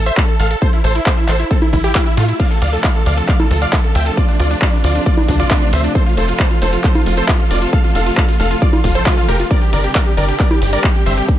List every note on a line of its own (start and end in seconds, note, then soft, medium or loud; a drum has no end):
0.00 0.11 A1 medium
0.06 0.14 C5 medium
0.06 0.14 E5 loud
0.06 closed hi-hat medium
0.17 0.25 A4 medium
0.17 kick loud
0.17 clap loud
0.17 closed hi-hat medium
0.28 0.36 A4 medium
0.28 closed hi-hat soft
0.40 0.55 A1 medium
0.40 0.47 A4 medium
0.40 0.47 F5 loud
0.40 0.47 F5 medium
0.40 open hi-hat loud
0.51 0.58 A4 medium
0.51 closed hi-hat medium
0.62 0.70 A4 medium
0.62 0.70 C5 loud
0.62 kick loud
0.62 closed hi-hat medium
0.73 0.81 E4 medium
0.73 closed hi-hat soft
0.84 1.00 A1 loud
0.84 0.92 A4 medium
0.84 0.92 C5 medium
0.84 open hi-hat loud
0.95 1.03 E4 medium
0.95 closed hi-hat medium
1.06 1.14 A4 medium
1.06 1.14 C5 medium
1.06 kick loud
1.06 clap loud
1.06 closed hi-hat medium
1.17 1.25 E4 medium
1.17 closed hi-hat soft
1.28 1.44 A1 loud
1.28 1.36 A4 medium
1.28 1.36 C5 loud
1.28 1.36 C5 medium
1.28 clap medium
1.28 open hi-hat loud
1.40 1.47 E4 medium
1.40 closed hi-hat medium
1.51 1.58 C4 medium
1.51 1.58 A4 loud
1.51 1.58 A4 medium
1.51 kick loud
1.51 closed hi-hat medium
1.62 1.70 E4 medium
1.62 closed hi-hat soft
1.62 high conga medium
1.73 1.89 A1 loud
1.73 1.81 E4 medium
1.73 kick medium
1.73 open hi-hat loud
1.73 high conga medium
1.84 1.92 E4 medium
1.84 1.92 G4 loud
1.84 closed hi-hat medium
1.95 2.03 E4 medium
1.95 kick loud
1.95 clap loud
1.95 closed hi-hat medium
2.06 2.14 E4 medium
2.06 closed hi-hat soft
2.17 2.33 A2 medium
2.17 2.25 A3 medium
2.17 2.25 F4 medium
2.17 open hi-hat loud
2.28 2.36 E4 medium
2.28 closed hi-hat medium
2.39 9.47 C3 medium
2.39 5.92 F3 medium
2.39 9.47 A3 medium
2.39 5.92 D4 medium
2.39 9.47 F4 medium
2.39 2.47 D5 medium
2.39 2.47 F5 loud
2.39 kick loud
2.39 closed hi-hat medium
2.39 crash medium
2.51 2.58 A4 medium
2.51 closed hi-hat soft
2.62 2.78 D2 medium
2.62 2.70 D5 medium
2.62 2.70 F5 medium
2.62 open hi-hat loud
2.62 ride medium
2.73 2.81 A4 medium
2.73 closed hi-hat medium
2.84 2.92 D5 medium
2.84 2.92 F5 medium
2.84 kick loud
2.84 clap loud
2.84 closed hi-hat medium
2.95 3.03 A4 medium
2.95 closed hi-hat soft
3.06 3.22 D2 loud
3.06 3.14 D5 medium
3.06 3.14 F5 medium
3.06 open hi-hat loud
3.06 ride medium
3.17 3.25 A4 medium
3.17 closed hi-hat medium
3.28 3.36 D5 medium
3.28 3.36 F5 loud
3.28 kick loud
3.28 clap medium
3.28 closed hi-hat medium
3.40 3.47 A4 medium
3.40 closed hi-hat soft
3.40 high conga medium
3.51 3.66 D2 medium
3.51 3.58 A4 medium
3.51 open hi-hat loud
3.51 ride medium
3.62 3.70 D5 medium
3.62 3.70 F5 medium
3.62 3.70 F5 loud
3.62 closed hi-hat medium
3.73 3.81 A4 medium
3.73 kick loud
3.73 clap loud
3.73 closed hi-hat medium
3.84 3.92 A4 medium
3.84 closed hi-hat soft
3.95 4.11 D2 medium
3.95 4.03 E5 medium
3.95 4.03 G5 loud
3.95 4.03 G5 medium
3.95 open hi-hat loud
3.95 ride medium
4.06 4.14 A4 medium
4.06 closed hi-hat medium
4.17 4.25 F4 medium
4.17 4.25 D5 loud
4.17 kick loud
4.17 closed hi-hat medium
4.28 4.36 D4 medium
4.28 closed hi-hat soft
4.40 4.55 D2 loud
4.40 4.47 F4 medium
4.40 4.47 D5 medium
4.40 open hi-hat loud
4.40 ride medium
4.51 4.58 D4 medium
4.51 4.59 D4 medium
4.51 closed hi-hat medium
4.62 4.70 F4 medium
4.62 4.70 D5 medium
4.62 kick loud
4.62 clap loud
4.62 closed hi-hat medium
4.73 4.81 D4 medium
4.73 closed hi-hat soft
4.84 5.00 D2 loud
4.84 4.92 F4 medium
4.84 4.92 D5 medium
4.84 4.92 D5 loud
4.84 open hi-hat loud
4.84 ride medium
4.95 5.03 D4 medium
4.95 closed hi-hat medium
5.06 5.14 F4 medium
5.06 5.14 D5 medium
5.06 5.14 D5 loud
5.06 kick loud
5.06 closed hi-hat medium
5.17 5.25 D4 medium
5.17 closed hi-hat soft
5.17 high conga medium
5.28 5.44 D2 medium
5.28 5.36 D4 medium
5.28 kick medium
5.28 open hi-hat loud
5.28 ride medium
5.40 5.47 F4 medium
5.40 5.47 D5 medium
5.40 5.47 D5 loud
5.40 closed hi-hat medium
5.51 5.58 D4 medium
5.51 5.59 D4 medium
5.51 kick loud
5.51 clap loud
5.51 closed hi-hat medium
5.62 5.70 D4 medium
5.62 closed hi-hat soft
5.73 5.89 D2 medium
5.73 5.81 C5 medium
5.73 5.81 E5 medium
5.73 open hi-hat loud
5.73 ride medium
5.84 5.92 D4 medium
5.84 closed hi-hat medium
5.95 9.47 F3 medium
5.95 9.47 A4 medium
5.95 6.03 A4 medium
5.95 6.03 C5 loud
5.95 kick loud
5.95 closed hi-hat medium
6.06 6.14 F4 medium
6.06 closed hi-hat soft
6.17 6.33 F1 medium
6.17 6.25 A4 medium
6.17 6.25 C5 medium
6.17 open hi-hat loud
6.17 ride medium
6.28 6.36 F4 medium
6.28 closed hi-hat soft
6.40 6.47 A4 medium
6.40 6.47 C5 medium
6.40 kick loud
6.40 clap loud
6.40 closed hi-hat medium
6.51 6.58 F4 medium
6.51 6.59 F4 medium
6.51 closed hi-hat soft
6.62 6.78 F1 loud
6.62 6.70 A4 medium
6.62 6.70 C5 medium
6.62 open hi-hat loud
6.62 ride medium
6.73 6.81 F4 medium
6.73 closed hi-hat medium
6.84 6.92 A4 medium
6.84 6.92 C5 loud
6.84 kick loud
6.84 clap medium
6.84 closed hi-hat soft
6.95 7.03 F4 medium
6.95 closed hi-hat soft
6.95 high conga medium
7.06 7.22 F1 medium
7.06 7.14 F4 medium
7.06 open hi-hat loud
7.06 ride medium
7.17 7.25 A4 medium
7.17 7.25 C5 medium
7.17 7.25 C5 loud
7.17 closed hi-hat medium
7.28 7.36 F4 medium
7.28 kick loud
7.28 clap loud
7.28 closed hi-hat medium
7.40 7.47 F4 medium
7.40 closed hi-hat soft
7.51 7.66 F1 medium
7.51 7.59 F4 medium
7.51 7.58 D5 medium
7.51 7.59 D5 medium
7.51 open hi-hat loud
7.51 ride medium
7.62 7.70 F4 medium
7.62 closed hi-hat medium
7.73 7.81 A4 medium
7.73 7.81 F5 loud
7.73 kick loud
7.73 closed hi-hat medium
7.84 7.92 F4 medium
7.84 closed hi-hat soft
7.95 8.11 F1 loud
7.95 8.03 A4 medium
7.95 8.03 F5 medium
7.95 open hi-hat loud
7.95 ride medium
8.06 8.14 F4 medium
8.06 closed hi-hat soft
8.17 8.25 A4 medium
8.17 8.25 F5 medium
8.17 kick loud
8.17 clap loud
8.17 closed hi-hat soft
8.29 8.36 F4 medium
8.29 open hi-hat medium
8.40 8.55 F1 loud
8.40 8.47 A4 medium
8.40 8.47 F5 medium
8.40 open hi-hat loud
8.40 ride medium
8.51 8.58 F4 medium
8.51 8.59 F4 medium
8.51 closed hi-hat soft
8.62 8.70 F4 medium
8.62 8.70 D5 loud
8.62 8.70 D5 medium
8.62 kick loud
8.62 closed hi-hat soft
8.73 8.81 F4 medium
8.73 closed hi-hat soft
8.73 high conga medium
8.84 9.00 F1 loud
8.84 8.92 F4 medium
8.84 kick medium
8.84 open hi-hat loud
8.84 ride medium
8.95 9.03 A4 medium
8.95 9.03 C5 loud
8.95 closed hi-hat medium
9.06 9.14 F4 medium
9.06 kick loud
9.06 clap loud
9.06 closed hi-hat medium
9.17 9.25 F4 medium
9.17 closed hi-hat soft
9.28 9.44 F1 medium
9.28 9.36 G4 medium
9.28 9.36 A#4 medium
9.28 open hi-hat loud
9.28 ride medium
9.40 9.47 F4 medium
9.40 closed hi-hat soft
9.51 11.39 C3 medium
9.51 11.39 D3 medium
9.51 11.39 G3 medium
9.51 11.39 D4 medium
9.51 11.39 G4 medium
9.51 9.58 A#4 medium
9.51 9.58 D5 loud
9.51 kick loud
9.51 closed hi-hat medium
9.62 9.70 G4 medium
9.62 closed hi-hat soft
9.73 9.89 G1 loud
9.73 9.81 A#4 medium
9.73 9.81 D5 medium
9.73 open hi-hat loud
9.73 ride medium
9.84 9.92 G4 medium
9.84 closed hi-hat soft
9.95 10.03 A#4 medium
9.95 10.03 D5 medium
9.95 kick loud
9.95 clap loud
9.95 closed hi-hat soft
10.06 10.14 G4 medium
10.06 closed hi-hat soft
10.17 10.33 G1 loud
10.17 10.25 A#4 medium
10.17 10.25 D5 medium
10.17 open hi-hat loud
10.17 ride medium
10.28 10.36 G4 medium
10.28 closed hi-hat soft
10.39 10.47 A#4 medium
10.39 10.47 D5 loud
10.39 10.47 D5 medium
10.39 kick loud
10.39 clap medium
10.39 closed hi-hat medium
10.51 10.58 G4 medium
10.51 closed hi-hat soft
10.51 high conga medium
10.62 10.78 G1 medium
10.62 10.70 G4 medium
10.62 open hi-hat loud
10.62 ride medium
10.73 10.81 A#4 medium
10.73 10.81 D5 loud
10.73 10.81 D5 medium
10.73 closed hi-hat medium
10.84 10.92 G4 medium
10.84 kick loud
10.84 clap loud
10.84 closed hi-hat medium
10.95 11.03 G4 medium
10.95 closed hi-hat soft
11.06 11.22 G1 medium
11.06 11.14 C5 medium
11.06 11.14 E5 medium
11.06 open hi-hat loud
11.06 ride medium
11.17 11.25 G4 medium
11.17 closed hi-hat medium
11.28 kick loud
11.28 closed hi-hat medium